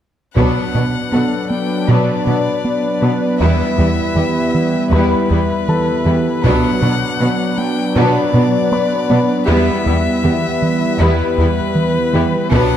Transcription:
0.36 B2 F#3 B3 D4 B4 F#5, taiko
0.74 B2 F#3 B3 D4
1.12 B2 F#3 B3 F#4 A4 A5
1.50 B3 G5
1.88 B2 F#3 B3 D4 B4 D5
2.26 B2 F#3 B3 D4
2.65 B3
3.02 B2 F#3 B3 D4
3.40 E2 G3 B3 E4 B4 E5
3.78 E2 G3 B3 E4
4.16 E2 E3 G3 B3 G4
4.55 E3
4.92 E2 G3 B3 E4 B4 B5
5.30 E2 G3 B3 E4
5.68 E3 A4 A5
6.06 E2 E3 G3 B3 E4
6.43 B2 F#3 B3 D4 B4 F#5, taiko
6.82 B2 F#3 B3 D4
7.20 B2 F#3 B3 F#4
7.57 B3 G5
7.96 B2 F#3 B3 D4 B4 D5
8.34 B2 F#3 B3 D4
8.72 B3 B4 B5
9.10 B2 F#3 B3 D4
9.47 E2 G3 B3 E4 B4 E5
9.86 E2 G3 B3 E4 E5
10.24 E2 E3 G3 B3 G4
10.62 E3
11.00 E2 G3 B3 E4 B4
11.38 E2 G3 B3 E4
11.75 E3
12.13 E2 E3 G3 B3 E4
12.52 B2 F#3 B3 D4 B4 F#5, taiko

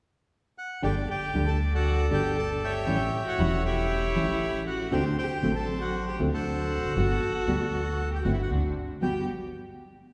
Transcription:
0.58 F#5
0.82 G1 D3 G3 A3 D4 G4 D5 G5
1.08 G4 D5 G5
1.34 D2 D3 G3 A3 D4 G4
1.46 A4 A5
1.73 F#4 A4 D5 F#5
2.10 G1 D3 G3 A3 D4 G4 G5
2.37 A4 A5
2.62 G4 C#5 E5 G5
2.86 A1 E3 G3 A3 C#4 E4
3.26 F#4 C#5 F#5
3.38 E1 E3 G3 A3 C#4 E4
3.65 E4 G4 C#5 E5
4.15 A1 E3 G3 A3 C#4 E4
4.67 F#4 F#5
4.91 D2 D3 F#3 A3 C4 D4 F#4 G4 C5 G5
5.18 G4 C5 G5
5.43 A1 D3 F#3 A3 C4 D4 F#4
5.55 A4 A5
5.81 F#4 F#5
6.08 G4 G5
6.19 D2 D3 F#3 A3 C4 D4 F#4
6.33 F#4 A4 C5 F#5
6.78 E1
6.84 F1
6.90 F#1
6.96 G1 G3 B3 F#4
7.46 D2 G3 B3 F#4
8.12 G4 G5
8.22 G1 D3 G3 A3 B3 C4 F#4 F#5
8.26 F#4
8.31 E4 E5
8.40 F#4 F#5
8.50 D2 C4 D4 F#4
9.01 G1 G3 B3 F#4 G4 G5

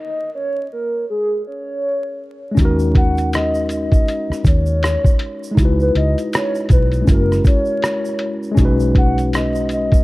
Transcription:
Already playing: D#5
0.35 C#5
0.73 A#4
1.10 G#4
1.47 C#5
2.51 G#3 C#4
2.57 D#2 D#4, kick, closed hi-hat, shaker
2.62 F#4 A#4
2.79 shaker
2.95 F#5, kick, closed hi-hat
3.18 closed hi-hat, shaker
3.33 D#5, cross-stick, closed hi-hat, shaker
3.55 shaker
3.69 D#5, closed hi-hat, shaker
3.92 kick, closed hi-hat, shaker
4.08 closed hi-hat, shaker
4.30 muted fingered electric bass stroke, cross-stick, shaker
4.45 D#2 C#5, kick, closed hi-hat, shaker
4.66 shaker
4.83 cross-stick, closed hi-hat, shaker
5.04 kick, shaker
5.19 closed hi-hat
5.43 shaker
5.51 G#3 D#4
5.57 C#2 E4, kick, closed hi-hat, shaker
5.62 F#4 B4
5.80 B4, shaker
5.95 C#2 D#5, closed hi-hat
6.18 closed hi-hat, shaker
6.33 C#5, cross-stick, closed hi-hat, shaker
6.55 shaker
6.69 B1 B4, kick, closed hi-hat, shaker
6.92 closed hi-hat, shaker
7.01 G#3 C#4
7.07 F#1 E4 A#4, kick, closed hi-hat, shaker
7.11 F#4 A#4
7.32 cross-stick, shaker
7.45 C#5, kick, closed hi-hat, shaker
7.65 shaker
7.82 cross-stick, closed hi-hat, shaker
8.05 shaker
8.19 closed hi-hat
8.43 shaker
8.51 G#3 C#4
8.57 B1 D#4, kick, closed hi-hat, shaker
8.62 F#4 B4
8.80 shaker
8.95 F#5, kick, closed hi-hat
9.18 closed hi-hat, shaker
9.33 D#5, cross-stick, closed hi-hat, shaker
9.55 shaker
9.69 D#5, closed hi-hat, shaker
9.92 kick, closed hi-hat, shaker

